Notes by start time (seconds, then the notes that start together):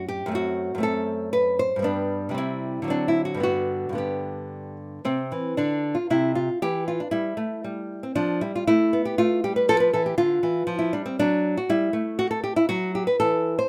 Already playing: F#2 A3
0.08 G4
0.26 F#2 A3
0.32 C4 F#4
0.75 F#2 A3
0.80 C4 A4
1.33 B4
1.59 C5
1.76 G2 G3
1.82 B3 D4
2.29 C3 G3
2.34 C4 E4
2.82 D3 F#3
2.88 C4 D4
3.08 E4
3.25 F#4
3.34 G2 D3
3.40 B3 F#4
3.89 G2 D3
3.95 B3 G4
5.05 C3 C4
5.32 E3
5.57 D3 D4
5.95 F4
6.10 C3 E4
6.35 F4
6.62 E3 G4
6.88 F4
7.00 D4
7.11 G3 E4
7.37 A3
7.64 G3
8.03 C4
8.15 F3 D4
8.41 G3 E4
8.55 F4
8.67 A3 E4
8.93 B3
9.05 G4
9.18 A3 F4
9.44 G3 G4
9.56 B4
9.69 F3 A4
9.80 B4
9.93 E3 A4
10.06 G4
10.18 D3 F4
10.43 E3
10.67 F3
10.79 E4
10.93 G3 D4
11.06 C4
11.19 F#3 D4
11.57 F#4
11.69 G3 E4
11.93 A3
12.19 F#4
12.31 A4
12.44 G4
12.56 E4
12.69 F#3 F#4
12.95 G4
13.07 B4
13.20 E3 A4
13.59 C5